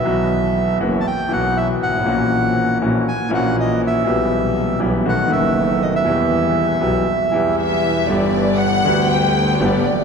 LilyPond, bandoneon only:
\new Staff \with { instrumentName = "Bandoneon" } { \time 4/4 \key e \minor \tempo 4 = 120 e''4. r16. a''32 g''8 fis''8 e''8 fis''8~ | fis''4. r8 gis''8 fis''8 dis''8 e''8~ | e''4. r8 fis''8 e''4 dis''16 e''16~ | e''2. r4 |
\key g \major r1 | }